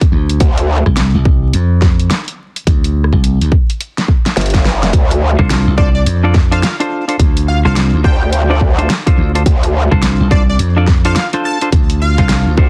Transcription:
0.01 kick, closed hi-hat
0.12 D2
0.29 closed hi-hat
0.40 D2, kick, closed hi-hat
0.58 closed hi-hat
0.86 C2, kick, cross-stick
0.97 snare, closed hi-hat
1.14 C2
1.25 kick
1.53 F2, closed hi-hat
1.82 kick, snare
2.00 closed hi-hat
2.11 snare, closed hi-hat
2.28 closed hi-hat
2.56 closed hi-hat
2.67 D2, kick, closed hi-hat
2.84 closed hi-hat
3.04 cross-stick
3.13 C2, kick
3.24 closed hi-hat
3.41 D2, closed hi-hat
3.52 kick
3.70 closed hi-hat
3.81 closed hi-hat
3.98 snare, closed hi-hat
4.08 kick
4.26 snare, closed hi-hat
4.37 G1, snare, closed hi-hat
4.41 closed hi-hat
4.46 closed hi-hat
4.50 kick, closed hi-hat
4.55 snare, closed hi-hat
4.65 snare
4.83 snare, closed hi-hat
4.93 D2, kick, closed hi-hat
5.11 closed hi-hat
5.39 C2 D4 F4 A4 C5, kick, cross-stick
5.50 snare, closed hi-hat
5.67 C2
5.77 D4 F4 A4 C5 D5, kick
5.95 D5
6.06 F2, closed hi-hat
6.23 D4 F4 A4 D5
6.34 kick, snare
6.51 D4 F4 A4 C5 F5, closed hi-hat
6.63 F5, snare, closed hi-hat
6.80 D4 F4 A4 C5, closed hi-hat
7.08 D4 F4 A4 C5, closed hi-hat
7.19 D2, kick, closed hi-hat
7.37 closed hi-hat
7.48 F5
7.65 C2 D4 F4 A4 C5 F5, cross-stick
7.76 snare, closed hi-hat
7.94 D2
8.04 D2 D4 F4 A4 C5 G5, kick
8.33 closed hi-hat
8.50 D4 F4 A4 D5
8.61 kick
8.78 D4 F4 A4 C5, closed hi-hat
8.90 snare, closed hi-hat
9.06 D4 F4 A4 C5, kick, closed hi-hat
9.18 D2
9.35 D4 F4 A4 C5, closed hi-hat
9.46 D2, kick, closed hi-hat
9.63 closed hi-hat
9.91 C2 D4 F4 A4 C5, kick, cross-stick
10.02 snare, closed hi-hat
10.20 C2
10.31 D4 F4 A4 C5 D5, kick
10.49 D5
10.59 F2, closed hi-hat
10.76 D4 F4 A4 D5
10.87 kick, snare
11.05 D4 F4 A4 C5 F5, closed hi-hat
11.16 F5, snare, closed hi-hat
11.33 D4 F4 A4 C5, closed hi-hat
11.45 A5
11.61 D4 F4 A4 C5, closed hi-hat
11.72 D2, kick, closed hi-hat
11.90 closed hi-hat
12.02 F5
12.18 C2 D4 F4 A4 C5, kick, cross-stick, closed hi-hat
12.29 snare, closed hi-hat
12.46 D2
12.57 D2 D4 F4 A4 C5, kick

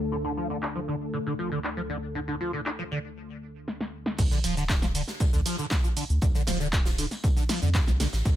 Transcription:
Already playing: D2 D3 A3 A4
0.12 D3
0.25 D3
0.37 F3
0.50 D3
0.63 D4, clap
0.75 F3
0.88 D3
1.13 D3
1.26 D3
1.39 F3
1.52 D3
1.64 D4, clap
1.77 F3
1.90 D3
2.15 D3
2.28 D3
2.41 F3
2.53 D3
2.66 D4, clap
2.79 F3
2.91 D3
3.68 snare
3.81 snare
4.06 snare
4.18 D2 D3, kick, tambourine, crash, shaker
4.31 D3, snare, shaker
4.44 D1 F3, open hi-hat, tambourine, shaker
4.57 D3, snare, shaker
4.69 D4, kick, snare, clap, tambourine, shaker
4.82 F3, snare, shaker
4.95 D3, open hi-hat, tambourine, shaker
5.08 snare, shaker
5.20 D3, kick, tambourine, shaker
5.33 D2 D3, snare, shaker
5.45 F3, snare, open hi-hat, tambourine, shaker
5.59 D3, shaker
5.70 D4, kick, snare, clap, tambourine, shaker
5.84 F3, shaker
5.96 D3, open hi-hat, tambourine, shaker
6.09 D2, shaker
6.22 D2 D3, kick, tambourine, shaker
6.35 D3, snare, shaker
6.47 D1 F3, snare, open hi-hat, tambourine, shaker
6.60 D3, snare, shaker
6.73 D4, kick, clap, tambourine, shaker
6.85 F3, snare, tambourine, shaker
6.98 D3, snare, open hi-hat, shaker
7.11 snare, tambourine, shaker
7.24 D3, kick, tambourine, shaker
7.36 D3, snare, shaker
7.49 F3, snare, open hi-hat, tambourine, shaker
7.62 F2 D3, shaker
7.74 D4, kick, snare, clap, tambourine, shaker
7.87 C2 F3, snare, shaker
8.00 D3, snare, open hi-hat, tambourine, shaker
8.13 A1, snare, tambourine, shaker
8.25 D2 D3, kick, tambourine, shaker

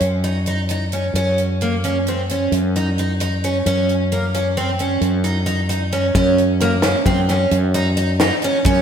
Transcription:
0.00 F#2, closed hi-hat
0.24 D#4, closed hi-hat
0.46 D#4, closed hi-hat
0.69 D#4, closed hi-hat
0.92 C#4, closed hi-hat
1.14 F#2 C#4, closed hi-hat
1.38 closed hi-hat
1.61 A#3, closed hi-hat
1.84 C#4, closed hi-hat
2.07 C4, closed hi-hat
2.29 C#4, closed hi-hat
2.52 F#2, closed hi-hat
2.76 D#4, closed hi-hat
2.98 D#4, closed hi-hat
3.20 D#4, closed hi-hat
3.44 C#4, closed hi-hat
3.66 F#2 C#4, closed hi-hat
3.89 closed hi-hat
4.12 A#3, closed hi-hat
4.34 C#4, closed hi-hat
4.57 C4, closed hi-hat
4.79 C#4, closed hi-hat
5.01 F#2, closed hi-hat
5.24 D#4, closed hi-hat
5.46 D#4, closed hi-hat
5.69 D#4, closed hi-hat
5.92 C#4, closed hi-hat
6.15 F#2 C#4, kick, closed hi-hat
6.38 closed hi-hat
6.60 A#3, snare, closed hi-hat
6.82 C#4, snare, closed hi-hat
7.06 F#2 C4, kick, closed hi-hat
7.29 C#4, snare, closed hi-hat
7.51 F#2, closed hi-hat
7.74 D#4, closed hi-hat
7.97 D#4, closed hi-hat
8.20 D#4, snare, closed hi-hat
8.42 C#4, closed hi-hat
8.64 F#2 C#4, kick, closed hi-hat

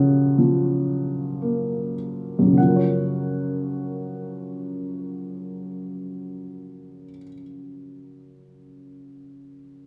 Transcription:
Already playing: F#2 C#3 F3 C#5 F#5
0.38 F3
1.42 A#3
2.39 F#2
2.46 C#3
2.53 F#3
2.58 F3 F#5
2.69 A#4
2.76 C#5

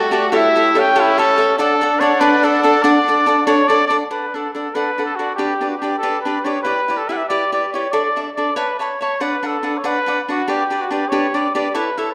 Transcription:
Already playing: G3 A3 F#4 D5
0.11 G4 A4 D5 E5
0.32 E4 G4 A4 C#5 E5
0.37 E5
0.55 G4 A4 C#5 E5
0.75 C#4 G4 A4 C#5 E5
0.80 G5
0.96 G4 A4 C#5 E5
1.01 E4
1.18 G4 A4 C#5 E5
1.36 G4 A4 C#5 E5
1.58 D4 A4 D5 F#5
1.81 D4 A4 D5 F#5
2.00 D4 A4 C#5 D5 F#5
2.21 D4 A4 B4 D5 F#5
2.43 D4 A4 D5 F#5
2.63 D4 A4 D5 F#5
2.83 D4 A4 D5 F#5
3.08 D4 A4 D5 F#5
3.26 D4 A4 D5 F#5
3.46 D4 A4 C#5 D5 F#5
3.68 D4 A4 D5 F#5
3.88 D4 A4 D5 F#5
4.11 D4 A4 B4 D5 F#5
4.34 D4 A4 D5 F#5
4.53 D4 A4 D5 F#5
4.75 D4 A4 B4 D5 F#5
4.98 D4 A4 D5 F#5
5.06 A4
5.16 D4 F#4 A4 D5
5.20 F#5
5.35 D4 G4 B4
5.39 D5
5.61 D4 G4 B4 D5
5.69 F#4
5.78 D4 G4
5.83 G4 B4 D5
5.98 A4
6.03 D4 G4 B4 D5
6.22 D4 B4
6.26 G4 B4 D5
6.44 D4 G4 B4 C#5 D5
6.63 E4 G4 B4 D5
6.88 E4 G4 B4 D5
6.98 A4
7.09 E4 G4 B4 D5 E5 F#5
7.17 E5
7.29 E4 G4 B4 D5
7.52 E4 G4 B4 D5
7.73 E4 G4 B4 C#5 D5
7.92 D4 A4 D5 E5
8.16 D4 A4 D5 E5
8.23 D5
8.35 D4 A4 D5 E5
8.56 B4 C#5 E5 A5 B5
8.79 C#5 E5 A5 B5
9.01 C#5 E5 A5 B5
9.20 D4 B4 D5 F#5
9.43 D4 A4 B4 D5 F#5
9.63 D4 A4 B4 D5 F#5
9.78 C#5
9.84 D4 B4 D5 F#5
10.06 D4 B4 D5 F#5
10.29 D4 F#4 B4 D5 F#5
10.48 D4 G4 B4 D5
10.70 D4 G4 B4 D5
10.81 F#4
10.91 D4 G4 B4 D5
11.09 D4 G4 B4 C#5 D5
11.34 D4 G4 B4 D5
11.55 D4 G4 B4 D5
11.74 E4 A4 B4 C#5 E5
11.97 E4 A4 C#5 E5

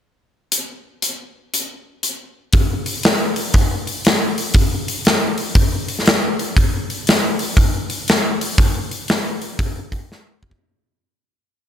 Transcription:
0.52 closed hi-hat
1.02 closed hi-hat
1.54 closed hi-hat
2.03 closed hi-hat
2.53 kick, open hi-hat
2.86 open hi-hat
3.03 snare, open hi-hat
3.36 open hi-hat
3.54 kick, open hi-hat
3.87 open hi-hat
4.05 snare, open hi-hat
4.38 open hi-hat
4.54 kick, open hi-hat
4.88 open hi-hat
5.05 snare, open hi-hat
5.38 open hi-hat
5.55 kick, open hi-hat
5.88 open hi-hat
5.99 snare
6.06 snare, open hi-hat
6.39 open hi-hat
6.57 kick, open hi-hat
6.90 open hi-hat
7.07 snare, open hi-hat
7.39 open hi-hat
7.57 kick, open hi-hat
7.90 open hi-hat
8.08 snare, open hi-hat
8.41 open hi-hat
8.58 kick, open hi-hat
8.91 open hi-hat
9.08 snare, open hi-hat
9.42 open hi-hat
9.59 kick, open hi-hat
9.92 kick, open hi-hat
10.12 snare
10.43 kick
10.51 kick

